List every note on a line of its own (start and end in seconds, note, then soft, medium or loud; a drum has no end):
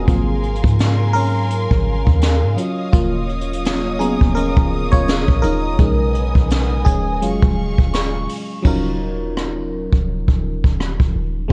0.00 1.18 G#4 medium
0.00 5.75 F5 medium
0.07 0.62 G#1 loud
0.07 0.57 F#3 medium
0.07 0.57 A#3 medium
0.07 0.58 C4 medium
0.07 0.58 F4 medium
0.07 2.55 A#4 medium
0.07 2.55 G#5 medium
0.07 2.55 C6 medium
0.07 kick loud
0.07 closed hi-hat medium
0.43 closed hi-hat soft
0.55 closed hi-hat soft
0.64 1.67 G#2 loud
0.64 kick medium
0.64 closed hi-hat medium
0.79 snare loud
0.79 closed hi-hat medium
1.13 2.54 C#4 medium
1.13 2.53 A#4 medium
1.13 open hi-hat medium
1.50 closed hi-hat medium
1.71 2.05 G#1 loud
1.71 kick loud
2.07 2.44 D#2 loud
2.07 kick medium
2.22 snare loud
2.22 closed hi-hat medium
2.43 2.57 G#2 medium
2.57 3.99 F#3 medium
2.57 3.99 C#4 soft
2.57 2.91 F4 medium
2.57 5.76 C#5 medium
2.57 8.61 D#5 medium
2.57 7.18 D#6 medium
2.57 closed hi-hat medium
2.93 4.17 D#1 loud
2.93 3.97 A#3 medium
2.93 3.99 F4 medium
2.93 kick loud
2.93 closed hi-hat medium
3.29 closed hi-hat soft
3.41 closed hi-hat soft
3.53 closed hi-hat medium
3.65 snare loud
3.65 closed hi-hat medium
3.99 4.32 F#3 soft
3.99 4.34 B3 medium
3.99 4.32 C#4 soft
3.99 4.33 F4 medium
3.99 4.33 G#4 medium
3.99 5.69 A#5 soft
3.99 closed hi-hat medium
4.21 4.56 D#1 loud
4.21 kick medium
4.35 4.89 C#4 medium
4.35 4.94 A#4 loud
4.35 closed hi-hat medium
4.57 4.91 D#1 medium
4.57 kick loud
4.92 5.27 D#1 loud
4.92 5.40 F4 medium
4.92 5.44 C#5 loud
4.92 kick medium
5.08 snare loud
5.08 closed hi-hat medium
5.28 5.43 A#1 loud
5.28 kick medium
5.42 5.78 D#1 loud
5.42 5.79 D#4 medium
5.42 6.90 A#4 loud
5.42 closed hi-hat medium
5.79 6.33 B1 loud
5.79 6.82 G#3 medium
5.79 7.21 B3 medium
5.79 6.82 C#4 medium
5.79 6.83 D#4 medium
5.79 7.21 G#5 medium
5.79 kick loud
5.79 closed hi-hat medium
6.15 closed hi-hat medium
6.35 6.84 B1 loud
6.35 kick medium
6.50 snare loud
6.50 closed hi-hat medium
6.85 7.23 D#1 loud
6.85 7.21 C#4 medium
6.85 8.24 G#4 medium
6.85 kick loud
6.85 closed hi-hat medium
7.22 7.41 F1 loud
7.22 8.61 F#3 medium
7.22 8.61 G#3 soft
7.22 8.61 C#4 soft
7.22 8.61 F4 medium
7.22 8.63 G#4 medium
7.22 8.64 F5 medium
7.22 8.64 C#6 medium
7.22 closed hi-hat medium
7.43 7.77 D#1 loud
7.43 kick loud
7.78 8.27 D#1 medium
7.78 kick medium
7.93 8.97 C#6 medium
7.93 snare loud
7.93 closed hi-hat medium
8.29 open hi-hat medium
8.62 9.89 D#1 loud
8.62 11.45 F#3 medium
8.62 11.46 C#4 medium
8.62 11.46 D#4 medium
8.62 11.47 F4 medium
8.62 kick loud
8.62 crash medium
8.67 11.48 A#4 medium
9.37 cross-stick loud
9.93 10.27 D#1 loud
9.93 kick medium
10.28 10.62 D#1 medium
10.28 kick medium
10.64 10.98 D#1 medium
10.64 kick medium
10.80 cross-stick loud
11.00 11.14 D#1 medium
11.00 kick medium
11.15 11.49 D#1 loud
11.48 11.53 G#3 medium
11.48 11.53 C4 medium